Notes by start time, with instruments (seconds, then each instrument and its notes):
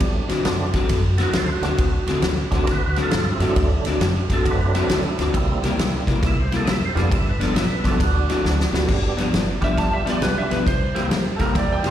Already playing: tonewheel organ G4
0.00 upright bass D2, tonewheel organ F#3 A3 C4 D4, kick, ride
0.28 upright bass D2, clean electric guitar D3 A3 C4 F#4, snare, ride
0.45 upright bass F#2, tonewheel organ F#3 A3 C4 D4, snare, ride
0.73 upright bass F#2, clean electric guitar D3 A3 C4 F#4, kick, snare, ride
0.89 upright bass F#2, kick, snare, ride
1.18 clean electric guitar D3 A3 C4 F#4, tonewheel organ A4, snare, ride
1.23 tonewheel organ F#4 A#4
1.33 upright bass D2, snare, ride
1.37 tonewheel organ A4 C5
1.52 tonewheel organ F#4
1.61 upright bass D2, tonewheel organ F#3 A3 C4 D4, clean electric guitar A3 C4 F#4, snare, ride
1.65 clean electric guitar D3
1.78 upright bass D2, kick, ride
2.06 upright bass D2, clean electric guitar D3 A3 C4 F#4, snare, ride
2.22 upright bass D2, snare, ride
2.51 upright bass D2, clean electric guitar D3 A3 C4 F#4, tonewheel organ F#3 A3 C4 D4, kick, snare, ride
2.67 upright bass D2, tonewheel organ F#4 A#4, kick, snare, ride
2.71 tonewheel organ B4
2.86 tonewheel organ F#4 B4
2.96 clean electric guitar D3 A3 C4 F#4, snare, ride
3.02 tonewheel organ F4 A4
3.11 upright bass G2, snare, ride
3.16 tonewheel organ F4 A4
3.30 tonewheel organ C4 E4
3.39 upright bass G2, clean electric guitar D3 A3 C4 F#4, tonewheel organ F#3 A3 C4 D4, snare, ride
3.44 tonewheel organ C4 E4
3.56 upright bass D2, kick, ride
3.61 tonewheel organ D4
3.84 upright bass D2, clean electric guitar D3 A3 C4 F#4, snare, ride
4.00 upright bass F#2, snare, ride
4.30 upright bass F#2, clean electric guitar D3 A3 C4 F#4, tonewheel organ A4, kick, snare, ride
4.45 upright bass F#2, tonewheel organ F#3 A3 C4 D4 A#4, kick, ride
4.51 tonewheel organ B4
4.75 clean electric guitar D3 A3 C4 F#4, snare, ride
4.89 upright bass D2, snare, ride
4.94 tonewheel organ A4
5.08 tonewheel organ E4
5.18 upright bass D2, clean electric guitar D3 A3 C4 F#4, snare, ride
5.22 tonewheel organ D4
5.33 upright bass C2, tonewheel organ G3 A#3 C4 E4, kick, ride
5.51 tonewheel organ G3 C4
5.63 upright bass C2, clean electric guitar C3 G3 A#3 E4, snare, ride
5.78 upright bass C2, tonewheel organ G3 A#3 C4 E4, snare, ride
6.07 upright bass C2, clean electric guitar C3 G3 A#3 E4, kick, snare, ride
6.23 upright bass C2, tonewheel organ E5, kick, snare, ride
6.40 tonewheel organ C5
6.52 clean electric guitar C3 G3 A#3 E4, snare, ride
6.57 tonewheel organ A4
6.65 upright bass F2, tonewheel organ D#5 E5, snare, ride
6.86 tonewheel organ C5
6.95 upright bass F2, clean electric guitar C3 G3 A#3 E4, tonewheel organ G3 B3 D4 F4 A4, snare, ride
7.12 upright bass G1, tonewheel organ E5, kick, ride
7.29 tonewheel organ B4
7.39 upright bass G1, clean electric guitar G2 F3 B3 D4, tonewheel organ A4, snare, ride
7.53 upright bass B1, tonewheel organ D#5, snare, ride
7.58 tonewheel organ E5
7.72 tonewheel organ B4
7.84 upright bass B1, clean electric guitar G2 F3 B3 D4, tonewheel organ A3 C4 D4 F#4 A4, kick, snare, ride
8.00 upright bass D2, tonewheel organ D4 F#4, kick, snare, ride
8.29 clean electric guitar D3 A3 C4 F#4, snare, ride
8.44 upright bass D2, snare
8.60 snare
8.72 upright bass D2, clean electric guitar D3 A3 C4 F#4, tonewheel organ G3 B3 D4 G4, snare
8.88 upright bass G1, kick, snare, crash
9.17 upright bass G1, clean electric guitar G2 F3 B3 D4, snare, ride
9.33 upright bass G1, snare, ride
9.61 upright bass G1, clean electric guitar G2 F3 B3 D4, tonewheel organ G3 B3 D4 F4 G4, electric slide guitar E5, kick, snare, ride
9.77 upright bass G1, electric slide guitar A5, kick, snare, ride
9.93 electric slide guitar E5
10.04 clean electric guitar G2 F3 B3 D4, tonewheel organ G3 B3 D4 F4 G4, snare, ride
10.10 electric slide guitar D5
10.22 upright bass C2, electric slide guitar B4, snare, ride
10.38 electric slide guitar E5
10.50 upright bass B1, clean electric guitar G2 F3 B3 D4, electric slide guitar B4, snare, ride
10.66 upright bass C2, electric slide guitar C5, kick, snare, ride
10.94 upright bass C2, clean electric guitar C3 G3 A#3 E4, tonewheel organ G3 A#3 C4 E4 G4, snare, ride
11.11 upright bass E2, snare, ride
11.36 upright bass E2, clean electric guitar C3 G3 A#3 E4, tonewheel organ G3 A#3 C4 E4 G4, upright piano A4, kick, snare, ride
11.41 upright piano A#4
11.55 upright bass E2, upright piano D5, kick, snare, ride
11.72 upright piano G5
11.83 clean electric guitar C3 G3 A#3 E4, snare, ride
11.87 upright piano C6